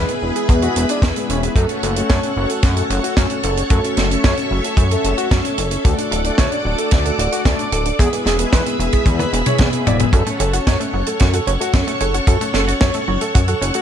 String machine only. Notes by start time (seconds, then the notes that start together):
Already playing: G#4 B4 E5 B5
1.56 A4 C#5 F#5 C#6
3.70 E5
5.85 D5 F#5 D6
7.99 G#4 B4 E5 B5
10.13 A4 C#5 F#5 C#6